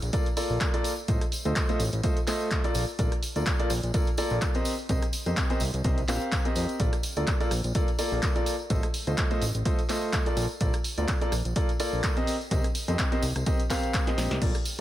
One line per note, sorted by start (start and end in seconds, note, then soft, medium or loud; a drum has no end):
0.02 0.11 A#1 medium
0.02 closed hi-hat soft
0.02 tambourine soft
0.13 0.26 A#3 medium
0.13 0.26 F4 medium
0.13 0.26 A4 medium
0.13 0.26 A#4 medium
0.13 0.26 D5 loud
0.13 kick loud
0.13 closed hi-hat medium
0.13 tambourine soft
0.26 closed hi-hat soft
0.26 tambourine soft
0.37 0.71 A#3 medium
0.37 0.71 F4 medium
0.37 0.71 A4 medium
0.37 0.71 A#4 medium
0.37 0.71 D5 loud
0.37 open hi-hat loud
0.37 tambourine medium
0.50 0.58 A#1 medium
0.50 tambourine soft
0.61 kick loud
0.61 clap loud
0.61 closed hi-hat medium
0.61 tambourine soft
0.74 0.92 A#3 medium
0.74 0.92 F4 medium
0.74 0.92 A4 medium
0.74 0.92 A#4 medium
0.74 0.92 D5 loud
0.74 closed hi-hat soft
0.74 tambourine soft
0.84 open hi-hat medium
0.84 tambourine medium
0.98 tambourine soft
1.08 1.19 A1 loud
1.08 1.21 A3 medium
1.08 1.21 F4 medium
1.08 1.21 A4 medium
1.08 1.21 C5 medium
1.08 1.21 D#5 medium
1.08 kick loud
1.08 closed hi-hat medium
1.08 tambourine medium
1.21 cross-stick medium
1.21 closed hi-hat soft
1.21 tambourine soft
1.32 open hi-hat loud
1.32 tambourine medium
1.45 1.54 D2 medium
1.45 1.66 A3 medium
1.45 1.66 F4 medium
1.45 1.66 A4 medium
1.45 1.66 C5 medium
1.45 1.66 D#5 medium
1.45 closed hi-hat soft
1.45 tambourine soft
1.56 kick loud
1.56 clap loud
1.56 closed hi-hat medium
1.56 tambourine medium
1.69 1.79 A3 medium
1.69 1.79 F4 medium
1.69 1.79 A4 medium
1.69 1.79 C5 medium
1.69 1.79 D#5 loud
1.69 closed hi-hat soft
1.69 tambourine soft
1.80 1.90 A1 medium
1.80 open hi-hat medium
1.80 tambourine loud
1.92 2.01 A1 medium
1.92 closed hi-hat medium
1.92 tambourine soft
2.03 2.16 A3 medium
2.03 2.16 F4 medium
2.03 2.16 A4 medium
2.03 2.16 C5 medium
2.03 2.16 D#5 loud
2.03 kick loud
2.03 closed hi-hat medium
2.03 tambourine soft
2.17 closed hi-hat soft
2.17 tambourine soft
2.27 2.61 A3 medium
2.27 2.61 F4 medium
2.27 2.61 A4 medium
2.27 2.61 C5 medium
2.27 2.61 D#5 loud
2.27 clap medium
2.27 open hi-hat loud
2.27 tambourine loud
2.41 tambourine soft
2.51 kick loud
2.51 clap loud
2.51 closed hi-hat medium
2.51 tambourine soft
2.64 2.82 A#3 medium
2.64 2.82 F4 medium
2.64 2.82 A4 medium
2.64 2.82 A#4 medium
2.64 2.82 D5 loud
2.64 closed hi-hat soft
2.64 tambourine soft
2.74 2.85 A#1 medium
2.74 open hi-hat medium
2.74 tambourine loud
2.88 tambourine soft
2.99 3.09 A#1 medium
2.99 3.11 A#3 medium
2.99 3.11 F4 medium
2.99 3.11 A4 medium
2.99 3.11 A#4 medium
2.99 3.11 D5 medium
2.99 kick loud
2.99 closed hi-hat medium
2.99 tambourine medium
3.12 cross-stick medium
3.12 closed hi-hat soft
3.12 tambourine soft
3.23 open hi-hat loud
3.23 tambourine loud
3.36 3.44 D2 medium
3.36 3.56 A#3 medium
3.36 3.56 F4 medium
3.36 3.56 A4 medium
3.36 3.56 A#4 medium
3.36 3.56 D5 medium
3.36 closed hi-hat soft
3.36 tambourine soft
3.46 kick loud
3.46 clap loud
3.46 closed hi-hat medium
3.46 tambourine medium
3.59 3.70 A#3 loud
3.59 3.70 F4 medium
3.59 3.70 A4 medium
3.59 3.70 A#4 medium
3.59 3.70 D5 loud
3.59 closed hi-hat soft
3.59 tambourine soft
3.70 3.81 A#1 medium
3.70 cross-stick medium
3.70 open hi-hat medium
3.70 tambourine loud
3.83 3.92 A#1 medium
3.83 closed hi-hat soft
3.83 tambourine soft
3.94 4.07 A#3 medium
3.94 4.07 F4 medium
3.94 4.07 A4 medium
3.94 4.07 A#4 medium
3.94 4.07 D5 loud
3.94 kick loud
3.94 closed hi-hat medium
3.94 tambourine medium
4.07 closed hi-hat soft
4.07 tambourine soft
4.17 4.52 A#3 medium
4.17 4.52 F4 medium
4.17 4.52 A4 medium
4.17 4.52 A#4 medium
4.17 4.52 D5 loud
4.17 open hi-hat loud
4.17 tambourine medium
4.30 4.39 A#1 medium
4.30 tambourine soft
4.41 kick loud
4.41 clap loud
4.41 closed hi-hat medium
4.41 tambourine medium
4.54 4.72 C4 medium
4.54 4.72 G4 medium
4.54 4.72 A#4 medium
4.54 4.72 C5 medium
4.54 4.72 D#5 loud
4.54 closed hi-hat soft
4.54 tambourine soft
4.65 open hi-hat medium
4.65 tambourine medium
4.78 tambourine soft
4.89 5.00 C2 medium
4.89 5.02 C4 medium
4.89 5.02 G4 medium
4.89 5.02 A#4 medium
4.89 5.02 C5 medium
4.89 5.02 D#5 medium
4.89 kick loud
4.89 closed hi-hat medium
4.89 tambourine medium
5.02 cross-stick medium
5.02 closed hi-hat soft
5.02 tambourine soft
5.13 open hi-hat loud
5.13 tambourine medium
5.25 5.35 F2 medium
5.25 5.47 C4 medium
5.25 5.47 G4 medium
5.25 5.47 A#4 medium
5.25 5.47 C5 medium
5.25 5.47 D#5 medium
5.25 closed hi-hat soft
5.25 tambourine soft
5.37 kick loud
5.37 clap loud
5.37 closed hi-hat medium
5.37 tambourine medium
5.50 5.60 C4 medium
5.50 5.60 G4 medium
5.50 5.60 A#4 medium
5.50 5.60 C5 medium
5.50 5.60 D#5 loud
5.50 closed hi-hat soft
5.50 tambourine soft
5.60 5.71 C2 medium
5.60 open hi-hat medium
5.60 tambourine medium
5.74 5.82 C2 medium
5.74 closed hi-hat soft
5.74 tambourine soft
5.84 6.04 C2 loud
5.84 5.97 C4 medium
5.84 5.97 G4 medium
5.84 5.97 A#4 medium
5.84 5.97 C5 medium
5.84 5.97 D#5 loud
5.84 kick loud
5.84 closed hi-hat medium
5.84 tambourine soft
5.98 closed hi-hat soft
5.98 tambourine soft
6.08 6.19 A#1 loud
6.08 6.42 C4 medium
6.08 6.42 G4 medium
6.08 6.42 A#4 medium
6.08 6.42 C5 medium
6.08 6.42 F5 loud
6.08 clap medium
6.08 open hi-hat loud
6.08 tambourine medium
6.21 closed hi-hat soft
6.21 tambourine soft
6.32 kick loud
6.32 clap loud
6.32 closed hi-hat medium
6.32 tambourine soft
6.45 6.77 C4 medium
6.45 6.77 G4 medium
6.45 6.77 A#4 medium
6.45 6.77 C5 medium
6.45 6.77 D#5 medium
6.45 closed hi-hat soft
6.45 tambourine soft
6.55 6.66 F2 medium
6.55 open hi-hat medium
6.55 tambourine medium
6.69 closed hi-hat soft
6.69 tambourine soft
6.80 6.90 A#1 medium
6.80 6.92 A#3 medium
6.80 6.92 F4 medium
6.80 6.92 A4 medium
6.80 6.92 A#4 medium
6.80 6.92 D5 medium
6.80 kick loud
6.80 closed hi-hat medium
6.80 tambourine medium
6.93 cross-stick medium
6.93 closed hi-hat soft
6.93 tambourine soft
7.03 open hi-hat loud
7.03 tambourine medium
7.16 7.25 D2 loud
7.16 7.37 A#3 medium
7.16 7.37 F4 medium
7.16 7.37 A4 medium
7.16 7.37 A#4 medium
7.16 7.37 D5 medium
7.16 closed hi-hat soft
7.16 tambourine soft
7.27 kick loud
7.27 clap loud
7.27 closed hi-hat medium
7.27 tambourine soft
7.40 7.51 A#3 medium
7.40 7.51 F4 medium
7.40 7.51 A4 medium
7.40 7.51 A#4 medium
7.40 7.51 D5 loud
7.40 closed hi-hat soft
7.40 tambourine soft
7.51 7.62 A#1 medium
7.51 cross-stick medium
7.51 open hi-hat medium
7.51 tambourine medium
7.64 7.73 A#1 medium
7.64 closed hi-hat soft
7.64 tambourine soft
7.75 7.88 A#3 loud
7.75 7.88 F4 medium
7.75 7.88 A4 medium
7.75 7.88 A#4 medium
7.75 7.88 D5 loud
7.75 kick loud
7.75 closed hi-hat medium
7.75 tambourine soft
7.88 closed hi-hat soft
7.88 tambourine soft
7.99 8.33 A#3 medium
7.99 8.33 F4 medium
7.99 8.33 A4 medium
7.99 8.33 A#4 medium
7.99 8.33 D5 loud
7.99 open hi-hat loud
7.99 tambourine medium
8.12 8.20 A#1 medium
8.12 tambourine soft
8.22 kick loud
8.22 clap loud
8.22 closed hi-hat medium
8.22 tambourine medium
8.36 8.53 A#3 medium
8.36 8.53 F4 medium
8.36 8.53 A4 medium
8.36 8.53 A#4 medium
8.36 8.53 D5 medium
8.36 closed hi-hat soft
8.36 tambourine soft
8.46 open hi-hat medium
8.46 tambourine loud
8.59 tambourine soft
8.70 8.81 A1 medium
8.70 8.83 A3 medium
8.70 8.83 F4 medium
8.70 8.83 A4 medium
8.70 8.83 C5 medium
8.70 8.83 D#5 medium
8.70 kick loud
8.70 closed hi-hat medium
8.70 tambourine medium
8.83 cross-stick medium
8.83 closed hi-hat soft
8.83 tambourine soft
8.94 open hi-hat loud
8.94 tambourine medium
9.07 9.16 D2 loud
9.07 9.28 A3 medium
9.07 9.28 F4 medium
9.07 9.28 A4 medium
9.07 9.28 C5 medium
9.07 9.28 D#5 medium
9.07 closed hi-hat soft
9.07 tambourine soft
9.17 kick loud
9.17 clap loud
9.17 closed hi-hat medium
9.17 tambourine soft
9.30 9.41 A3 medium
9.30 9.41 F4 medium
9.30 9.41 A4 medium
9.30 9.41 C5 medium
9.30 9.41 D#5 loud
9.30 closed hi-hat soft
9.30 tambourine soft
9.42 9.52 A1 medium
9.42 open hi-hat medium
9.42 tambourine medium
9.55 9.63 A1 medium
9.55 closed hi-hat soft
9.55 tambourine soft
9.65 9.78 A3 medium
9.65 9.78 F4 medium
9.65 9.78 A4 medium
9.65 9.78 C5 medium
9.65 9.78 D#5 loud
9.65 kick loud
9.65 closed hi-hat medium
9.65 tambourine soft
9.79 closed hi-hat soft
9.79 tambourine soft
9.89 10.23 A3 medium
9.89 10.23 F4 medium
9.89 10.23 A4 medium
9.89 10.23 C5 medium
9.89 10.23 D#5 loud
9.89 clap medium
9.89 open hi-hat loud
9.89 tambourine medium
10.02 tambourine soft
10.13 kick loud
10.13 clap loud
10.13 closed hi-hat medium
10.13 tambourine medium
10.26 10.44 A#3 medium
10.26 10.44 F4 medium
10.26 10.44 A4 medium
10.26 10.44 A#4 medium
10.26 10.44 D5 loud
10.26 closed hi-hat soft
10.26 tambourine soft
10.37 10.47 A#1 medium
10.37 open hi-hat medium
10.37 tambourine medium
10.50 tambourine soft
10.60 10.71 A#1 medium
10.60 10.73 A#3 medium
10.60 10.73 F4 medium
10.60 10.73 A4 medium
10.60 10.73 A#4 medium
10.60 10.73 D5 medium
10.60 kick loud
10.60 closed hi-hat medium
10.60 tambourine medium
10.73 cross-stick medium
10.73 closed hi-hat medium
10.73 tambourine soft
10.84 open hi-hat loud
10.84 tambourine medium
10.98 11.06 D2 medium
10.98 11.18 A#3 medium
10.98 11.18 F4 medium
10.98 11.18 A4 medium
10.98 11.18 A#4 medium
10.98 11.18 D5 medium
10.98 closed hi-hat soft
10.98 tambourine soft
11.08 kick loud
11.08 clap loud
11.08 closed hi-hat medium
11.08 tambourine soft
11.21 11.32 A#3 medium
11.21 11.32 F4 medium
11.21 11.32 A4 medium
11.21 11.32 A#4 medium
11.21 11.32 D5 loud
11.21 closed hi-hat soft
11.21 tambourine soft
11.32 11.43 A#1 medium
11.32 cross-stick medium
11.32 open hi-hat medium
11.32 tambourine medium
11.45 11.54 A#1 medium
11.45 closed hi-hat medium
11.45 tambourine soft
11.56 11.69 A#3 medium
11.56 11.69 F4 medium
11.56 11.69 A4 medium
11.56 11.69 A#4 medium
11.56 11.69 D5 loud
11.56 kick loud
11.56 closed hi-hat medium
11.56 tambourine soft
11.69 closed hi-hat soft
11.69 tambourine soft
11.80 12.14 A#3 medium
11.80 12.14 F4 medium
11.80 12.14 A4 medium
11.80 12.14 A#4 medium
11.80 12.14 D5 loud
11.80 open hi-hat loud
11.80 tambourine medium
11.93 12.01 A#1 medium
11.93 tambourine soft
12.03 kick loud
12.03 clap loud
12.03 closed hi-hat medium
12.03 tambourine soft
12.17 12.34 C4 medium
12.17 12.34 G4 medium
12.17 12.34 A#4 medium
12.17 12.34 C5 medium
12.17 12.34 D#5 loud
12.17 closed hi-hat soft
12.17 tambourine soft
12.27 open hi-hat medium
12.27 tambourine medium
12.41 tambourine soft
12.51 12.62 C2 loud
12.51 12.64 C4 medium
12.51 12.64 G4 medium
12.51 12.64 A#4 medium
12.51 12.64 C5 medium
12.51 12.64 D#5 medium
12.51 kick loud
12.51 closed hi-hat medium
12.51 tambourine soft
12.64 cross-stick medium
12.64 closed hi-hat medium
12.64 tambourine soft
12.75 open hi-hat loud
12.75 tambourine medium
12.88 12.97 F2 loud
12.88 13.09 C4 medium
12.88 13.09 G4 medium
12.88 13.09 A#4 medium
12.88 13.09 C5 medium
12.88 13.09 D#5 medium
12.88 closed hi-hat soft
12.88 tambourine soft
12.99 kick loud
12.99 clap loud
12.99 closed hi-hat medium
12.99 tambourine medium
13.12 13.22 C4 medium
13.12 13.22 G4 medium
13.12 13.22 A#4 medium
13.12 13.22 C5 medium
13.12 13.22 D#5 loud
13.12 closed hi-hat soft
13.12 tambourine soft
13.22 13.33 C2 medium
13.22 open hi-hat medium
13.22 tambourine medium
13.35 13.44 C2 medium
13.35 cross-stick medium
13.35 closed hi-hat medium
13.35 tambourine soft
13.46 13.59 C4 medium
13.46 13.59 G4 medium
13.46 13.59 A#4 medium
13.46 13.59 C5 medium
13.46 13.59 D#5 loud
13.46 kick loud
13.46 closed hi-hat medium
13.46 tambourine medium
13.59 closed hi-hat soft
13.59 tambourine soft
13.70 14.04 C4 medium
13.70 14.04 G4 medium
13.70 14.04 A#4 medium
13.70 14.04 C5 medium
13.70 14.04 F5 loud
13.70 kick medium
13.70 clap medium
13.70 open hi-hat loud
13.70 tambourine medium
13.83 closed hi-hat soft
13.83 tambourine soft
13.93 kick loud
13.93 clap loud
13.93 closed hi-hat medium
13.93 tambourine medium
14.07 14.39 C4 medium
14.07 14.39 G4 medium
14.07 14.39 A#4 medium
14.07 14.39 C5 medium
14.07 14.39 D#5 medium
14.07 snare medium
14.07 closed hi-hat soft
14.07 tambourine soft
14.18 14.28 A#1 medium
14.18 snare medium
14.18 open hi-hat medium
14.18 tambourine medium
14.31 14.39 C2 loud
14.31 snare medium
14.31 closed hi-hat soft
14.31 tambourine soft
14.42 14.52 A#1 loud
14.42 14.54 A#3 medium
14.42 14.54 F4 medium
14.42 14.54 A4 medium
14.42 14.54 A#4 medium
14.42 14.54 D5 medium
14.42 kick loud
14.42 closed hi-hat medium
14.42 crash medium
14.42 tambourine soft
14.55 cross-stick medium
14.55 closed hi-hat medium
14.55 tambourine soft
14.65 open hi-hat loud
14.65 tambourine medium